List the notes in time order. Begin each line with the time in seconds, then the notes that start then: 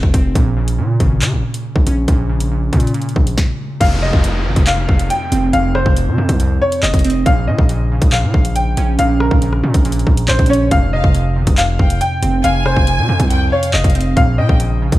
Already playing: F2 C3 C4
0.03 F1, kick
0.14 F1 C4, kick, closed hi-hat
0.35 A#1 A#2, kick, closed hi-hat
0.57 C#3
0.68 closed hi-hat
0.78 A#2
1.00 G#1 C#3, kick, closed hi-hat
1.22 A#2 C#3, clap, closed hi-hat
1.33 G#1
1.54 closed hi-hat
1.76 A#1, kick
1.86 A#1 C#4, closed hi-hat
2.08 A#1 A#2, kick, closed hi-hat
2.29 C#3
2.40 closed hi-hat
2.51 A#2
2.73 A#2 C#3, kick, closed hi-hat
2.80 closed hi-hat
2.87 closed hi-hat
2.94 A#2, closed hi-hat
3.02 closed hi-hat
3.09 closed hi-hat
3.16 A#1, kick
3.27 closed hi-hat
3.38 kick, snare
3.80 F1 F2 F5, kick, closed hi-hat, crash, downlifter
4.02 C3 D#5
4.13 F1, kick
4.24 F2, closed hi-hat
4.46 G#1 C3
4.56 F1, kick, closed hi-hat
4.67 F2 F5, clap, closed hi-hat
4.89 F1, kick
4.99 closed hi-hat
5.10 G5, closed hi-hat
5.32 F1 C4, closed hi-hat
5.53 F1 F2 F5, closed hi-hat
5.75 C3 C5, cross-stick
5.86 F1, kick
5.97 F2, closed hi-hat
6.07 C3
6.18 F2 C3
6.29 C2, kick, closed hi-hat
6.40 F2, closed hi-hat
6.62 C#5
6.72 closed hi-hat
6.83 F1 D#5, clap
6.94 F1, kick, closed hi-hat
6.99 closed hi-hat
7.04 C4, closed hi-hat
7.10 closed hi-hat
7.26 A#1 A#2 F5, kick, closed hi-hat
7.47 A#2 C#3 D#5
7.58 A#1, kick
7.69 A#2, closed hi-hat
7.91 C#3
8.02 A#1, kick, closed hi-hat
8.12 A#2 F5, clap, closed hi-hat
8.23 A#2
8.34 A#1, kick
8.45 closed hi-hat
8.56 G5, closed hi-hat
8.77 A#1 C#4, closed hi-hat
8.99 A#1 A#2 F5, closed hi-hat
9.20 C#3 A#4, cross-stick
9.31 A#1, kick
9.42 A#2, closed hi-hat
9.53 cross-stick
9.63 A#2 C#3
9.74 A#1, kick, closed hi-hat
9.85 A#2, closed hi-hat
9.92 closed hi-hat
9.99 closed hi-hat
10.07 A#1, kick
10.17 closed hi-hat
10.28 A#1 C5, clap
10.39 A#1, kick, closed hi-hat
10.46 C#4 C#5, closed hi-hat
10.53 closed hi-hat
10.71 F1 F2 F5, kick, closed hi-hat
10.93 C3 D#5 F5
11.04 F1, kick
11.14 F2, closed hi-hat
11.36 G#1 C3
11.47 F1, kick, closed hi-hat
11.58 F2 F5, clap, closed hi-hat
11.79 F1 G5, kick
11.90 closed hi-hat
12.01 G5, closed hi-hat
12.22 F1 C4, closed hi-hat
12.44 F1 F2 F5 G#5, closed hi-hat
12.66 C3 C5, cross-stick
12.76 F1, kick
12.87 F2, closed hi-hat
12.98 C3
13.09 F2 C3
13.20 C2, kick, closed hi-hat
13.30 F2 G5, closed hi-hat
13.52 C#5 F5
13.63 closed hi-hat
13.73 F1 D#5, clap
13.84 F1, kick, closed hi-hat
13.90 closed hi-hat
13.95 C4, closed hi-hat
14.01 closed hi-hat
14.16 A#1 A#2 F5, kick, closed hi-hat
14.38 A#2 C#3 D#5 G5
14.49 A#1, kick
14.60 A#2, closed hi-hat
14.82 C#3
14.92 A#1, kick, closed hi-hat